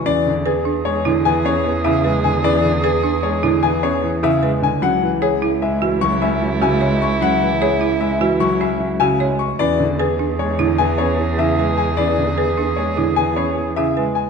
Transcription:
X:1
M:6/4
L:1/8
Q:1/4=151
K:Emix
V:1 name="Grand piano"
d z G z c z g c z e z g | d z G z c z g c z e z g | f z G z e z c' e z g z c' | f z G z e z c' e z g z c' |
d z G z c z g c z e z g | d z G z c z g c z e z g |]
V:2 name="Soprano saxophone"
G12- | G8- G3 z | E12- | E8- E3 z |
G12- | G8- G3 z |]
V:3 name="Marimba"
C z B D z E z C z E B z | C z B D z E z C z E B z | C z c E z F z C z F c z | C z c E z F z C z F c z |
C z B D z E z C z E B z | C z B D z E z C z E B z |]
V:4 name="Grand piano" clef=bass
E, D, z2 G, D, E, B, E, C, G, D, | E, D, z2 G, D, E, B, E, C, G, D, | F, E, z2 G, E, F, C F, C, G, z | F, E, z2 G, E, F, C F, C, G, z |
E, D, z2 G, D, E, B, E, C, G, z | E, D, z2 G, D, E, B, E, C, G, z |]
V:5 name="Cello" clef=bass
E,,12- | E,,12 | C,,12- | C,,12 |
E,,12- | E,,12 |]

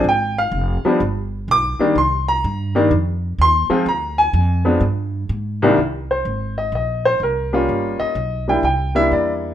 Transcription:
X:1
M:4/4
L:1/8
Q:"Swing" 1/4=126
K:Cm
V:1 name="Upright piano"
g f3 z2 d'2 | c' b3 z2 c'2 | b a3 z4 | z c2 e e c B z |
z e2 g g =e d z |]
V:2 name="Upright piano"
z3 [F,G,=B,D] z3 [E,G,_B,D] | z3 [E,G,B,D] z3 [F,A,CF] | z3 [F,A,=B,D] z3 [C,,E,G,_B,D] | z6 z [G,B,_DF]- |
[G,B,_DF]2 z [G,B,=D=E] z [G,B,DE]3 |]
V:3 name="Upright bass" clef=bass
A,,,2 F,,, z G,,,2 =B,,, z | C,,2 G,,2 F,,2 E,, z | D,,2 F,,2 G,,2 A,,2 | C,,2 A,,,2 B,,,2 C,,2 |
G,,, z =B,,,2 C,,2 =E,,2 |]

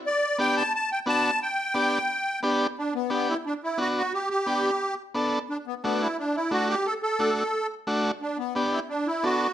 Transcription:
X:1
M:4/4
L:1/8
Q:1/4=176
K:G
V:1 name="Accordion"
d2 g a a g a2 | g6 z2 | D B, B, E D E F F | G G4 z3 |
D B, B, E D E F G | A A4 z3 | D B, B, E D E F2 |]
V:2 name="Transistor combo organ"
z2 [B,DG] z3 [B,DF] z | z2 [B,DG] z3 [B,DG] z | z2 [B,DG] z3 [B,DF] z | z2 [B,DG] z3 [B,DA] z |
z2 [A,DF] z3 [A,DF] z | z2 [A,DF] z3 [A,DF] z | z2 [B,DG] z3 [B,DA] z |]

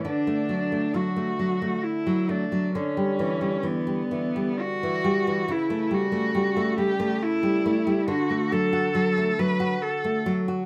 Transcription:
X:1
M:3/4
L:1/16
Q:1/4=68
K:D
V:1 name="Cello"
D4 F4 E2 D2 | C4 B,4 F4 | E2 F4 G2 E4 | F2 A4 B2 A2 z2 |]
V:2 name="Nylon-string guitar" clef=bass
D, A, F, A, F, A, F, A,2 F, A, F, | D, G, E, G, E, G, E, G,2 E, G, E, | C, A, G, A, G, A, G, A,2 G, A, G, | D, A, F, F F, A, F, F2 A, F, F |]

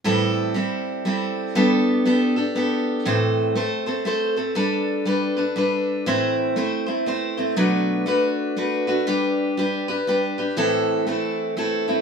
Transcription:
X:1
M:3/4
L:1/8
Q:"Swing" 1/4=120
K:Ador
V:1 name="Steel-string acoustic guitar"
[A,,E,G,CEA]2 [G,CEA]2 [G,CEA]2 | [G,B,DGA]2 [B,DGA] [DGA] [B,DGA]2 | [A,,E,A,CAc]2 [A,CAc] [A,CAc] [A,CAc] [A,CAc] | [G,DAB]2 [G,DAB] [DAB] [G,DAB]2 |
[A,,E,A,CEc]2 [A,CEc] [A,CEc] [A,CEc] [A,CEc] | [B,,F,A,DFB]2 [A,DFB]2 [A,DFB] [A,DFB] | [G,DGB]2 [G,DGB] [DGB] [G,DGB] [DGB] | [A,,E,A,CEA]2 [A,CEA]2 [A,CEA] [A,CEA] |]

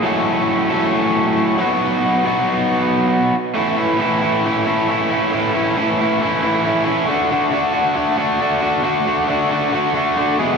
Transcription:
X:1
M:4/4
L:1/8
Q:1/4=136
K:A
V:1 name="Overdriven electric guitar"
[A,,F,A,CA]3 [A,,F,A,CA]4 [B,,F,B,^DF]- | [B,,F,B,^DF]2 [B,,F,B,DF]4- [B,,F,B,DF] z | [A,,E,A,CE] [A,CE] [A,,E,A,CE] [A,CE] [E,A,CE] [A,,E,A,CE] [E,A,CE] [A,CE] | [A,,E,A,CE] [A,CE] [A,,E,A,CE] [A,CE] [E,A,CE] [A,,E,A,CE] [E,A,CE] [A,CE] |
[D,A,DF] [A,DF] [D,A,DF] [A,DF] [D,A,DF] [D,A,DF] [D,A,DF] [A,DF] | [D,A,DF] [A,DF] [D,A,DF] [A,DF] [D,A,DF] [D,A,DF] [D,A,DF] [E,,B,,E,G,B,G] |]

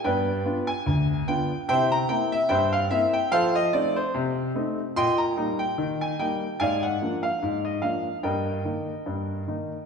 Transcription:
X:1
M:2/4
L:1/16
Q:"Swing 16ths" 1/4=73
K:Eb
V:1 name="Grand piano"
[=Bdg]3 a3 g2 | [c=eg] b g e [ceg] f e g | [=Acf] e d c z4 | [egc'] b2 g2 a g2 |
[dfa] _g2 f2 e f2 | [Beg]8 |]
V:2 name="Grand piano"
[G,,=B,]2 [B,DF]2 D,,2 [B,DF]2 | [C,=E]2 [B,CE]2 G,,2 [B,CE]2 | F,2 [=A,CE]2 C,2 [A,CE]2 | B,,2 [G,B,E]2 E,2 [G,B,E]2 |
A,,2 [F,B,D]2 A,,2 [F,B,D]2 | G,,2 [E,B,E]2 G,,2 [E,B,E]2 |]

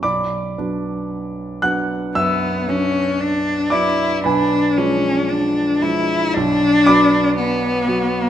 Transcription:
X:1
M:4/4
L:1/8
Q:1/4=57
K:Bm
V:1 name="Cello"
z4 B, C D E | D C D E D2 B,2 |]
V:2 name="Grand piano"
[dbd']3 [ff'] [ee']3 [dd'] | [B^gb]4 z [dbd']3 |]
V:3 name="Grand piano"
B,,, [F,B,D]2 [F,B,D] F,, [F,B,D]2 [F,B,D] | B,,, [=F,^G,D]2 [F,G,D] B,,, [^F,B,F]2 [F,B,F] |]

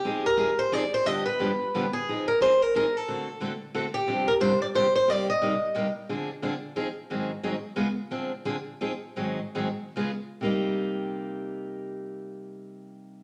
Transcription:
X:1
M:3/4
L:1/16
Q:"Swing" 1/4=179
K:Cm
V:1 name="Steel-string acoustic guitar"
G2 B4 c2 d2 c2 | e2 =B8 A2- | A2 B2 c2 B2 B2 =A2- | =A6 z4 G2- |
G2 B2 c2 d2 c2 c2 | d2 e8 z2 | z12 | z12 |
z12 | z12 | z12 | z12 |]
V:2 name="Steel-string acoustic guitar"
[F,CEA]2 z2 [F,CEA] z3 [F,CEA] z3 | [G,,D,F,=B,DG]2 z2 [G,,D,F,B,DG] z3 [G,,D,F,B,DG] z3 | [F,CEA]2 z2 [F,CEA] z3 [F,CEA] z3 | [D,=A,C^F=A]2 z2 [D,A,CFA] z3 [D,A,CFA] z3 |
[G,,C,F,CDG]2 z2 [G,,C,F,CDG] z3 [G,,C,F,CDG] z3 | [C,G,B,EG]2 z2 [C,G,B,EG] z3 [C,G,B,EG] z3 | [D,F,CDA]2 z2 [D,F,CDA] z3 [F,CEA] z3 | [A,,E,_G,CEA]2 z2 [A,,E,G,CEA] z3 [_D,A,_CFA] z3 |
[D,F,CDA]2 z2 [D,F,CDA] z3 [F,CEA] z3 | [A,,E,_G,CEA]2 z2 [A,,E,G,CEA] z3 [_D,A,_CFA] z3 | [C,G,B,EG]12- | [C,G,B,EG]12 |]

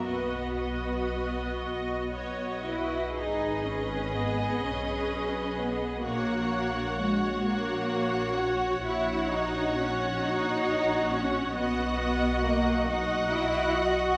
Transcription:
X:1
M:6/8
L:1/8
Q:3/8=43
K:B
V:1 name="Violin section"
d d3 d2 | d6 | f3 f3 | f6 |
f3 f3 |]
V:2 name="Violin section"
B B2 d c B | B6 | c3 c3 | c6 |
d3 d3 |]
V:3 name="Viola section"
F F3 F2 | G6 | F3 F3 | F6 |
F3 F3 |]
V:4 name="Cello section"
B,4- B, E | D C B, C2 B, | A,2 G, A,2 F | E D C D2 C |
B,2 A, D E F |]
V:5 name="Double bass section" clef=bass
B,,,3 B,,,3 | G,,,3 B,,,3 | A,,,6 | A,,,6 |
B,,,6 |]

